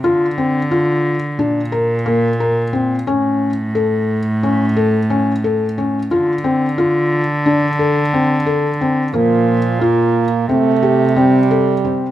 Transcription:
<<
  \new Staff \with { instrumentName = "Felt piano" } { \time 9/8 \key d \minor \tempo 4. = 59 f'8 c'8 f'4 d'8 bes'8 bes8 bes'8 c'8 | cis'4 a'4 cis'8 a'8 cis'8 a'8 cis'8 | f'8 c'8 f'4 d'8 a'8 c'8 a'8 c'8 | bes4 f'4 c'8 g'8 c'8 a'8 c'8 | }
  \new Staff \with { instrumentName = "French horn" } { \clef bass \time 9/8 \key d \minor r1 r8 | r1 r8 | r1 r8 | f4 bes4 a4 g4. | }
  \new Staff \with { instrumentName = "Cello" } { \clef bass \time 9/8 \key d \minor d2 bes,2~ bes,8 | a,1~ a,8 | d1~ d8 | bes,2 c2~ c8 | }
>>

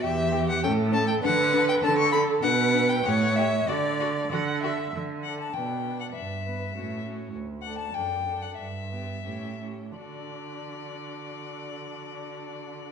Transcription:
<<
  \new Staff \with { instrumentName = "Violin" } { \time 2/4 \key d \major \tempo 4 = 96 e''8. fis''16 g''8 a''16 g''16 | fis''8. g''16 a''16 cis'''16 b''8 | fis''8. g''16 fis''8 e''8 | d''4 r4 |
r8 a'8 b'8 b'8 | r8 b'8 fis'8 fis'8 | r8 a'8 a'8 a'8 | r8 g'8 g'8 g'8 |
fis'2~ | fis'2 | }
  \new Staff \with { instrumentName = "Violin" } { \time 2/4 \key d \major g'8 g'8 cis'8 cis'8 | d'8 d'8 d'8 d'8 | d'8 d'8 g'8 g'8 | fis'8 fis'8 fis'8 fis'8 |
r8 fis''16 a''16 g''8. fis''16 | e''4. r8 | r8 fis''16 a''16 g''8. fis''16 | e''4. r8 |
d''2~ | d''2 | }
  \new Staff \with { instrumentName = "Viola" } { \time 2/4 \key d \major g'4 a'4 | b'4 a'4 | b'4 cis''4 | d''4 fis''8 e''8 |
r8 d'8 d'8 d'8 | r8 b8 cis'8 cis'8 | r8 d'8 d'8 d'8 | r8 b8 cis'8 cis'8 |
d'2~ | d'2 | }
  \new Staff \with { instrumentName = "Cello" } { \clef bass \time 2/4 \key d \major e,4 a,4 | d4 d4 | b,4 a,4 | d4 d4 |
d4 b,4 | g,4 a,4 | d,4 fis,4 | g,4 a,4 |
d2~ | d2 | }
>>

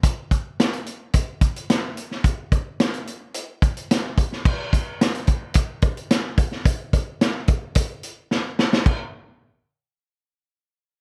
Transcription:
\new DrumStaff \with { instrumentName = "Drums" } \drummode { \time 4/4 \tempo 4 = 109 <hh bd>8 <hh bd>8 <hh sn>16 hh16 hh8 <hh bd>8 <hh bd>16 hh16 <hh sn>8 hh16 sn16 | <hh bd>8 <hh bd>8 <hh sn>16 hh16 hh8 hh8 <hh bd>16 hh16 <hh sn>8 <hh bd>16 sn16 | <cymc bd>8 <hh bd>8 <hh sn>16 hh16 <hh bd>8 <hh bd>8 <hh bd>16 hh16 <hh sn>8 <hh bd>16 sn16 | <hh bd>8 <hh bd>8 <hh sn>8 <hh bd>8 <hh bd>8 hh8 sn8 sn16 sn16 |
<cymc bd>4 r4 r4 r4 | }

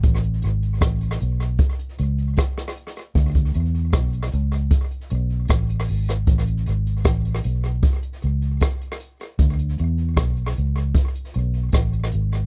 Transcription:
<<
  \new Staff \with { instrumentName = "Fingered electric bass" } { \clef bass \time 4/4 \key a \major \tempo 4 = 77 a,,8 gis,,8 a,,8 b,,8 r8 cis,8 r4 | d,8 e,8 b,,8 cis,8 r8 b,,8 a,,8 gis,,8 | a,,8 gis,,8 a,,8 b,,8 r8 cis,8 r4 | d,8 e,8 b,,8 cis,8 r8 b,,8 a,,8 gis,,8 | }
  \new DrumStaff \with { instrumentName = "Drums" } \drummode { \time 4/4 <hh bd>16 hh16 hh16 hh16 <hh bd ss>16 hh16 hh16 hh16 <hh bd>16 hh16 hh16 hh16 <hh bd ss>16 <hh ss>16 hh16 hh16 | <hh bd>16 <hh bd>16 hh16 hh16 <hh bd ss>16 hh16 hh16 hh16 <hh bd>16 hh16 hh16 hh16 <hh bd ss>16 hh16 hho16 <hh ss>16 | <hh bd>16 hh16 hh16 hh16 <hh bd ss>16 hh16 hh16 hh16 <hh bd>16 hh16 hh16 hh16 <hh bd ss>16 hh16 hh16 hh16 | <hh bd>16 hh16 hh16 hh16 <hh bd ss>16 hh16 hh16 hh16 <hh bd>16 hh16 hh16 hh16 <hh bd ss>16 hh16 hh16 hh16 | }
>>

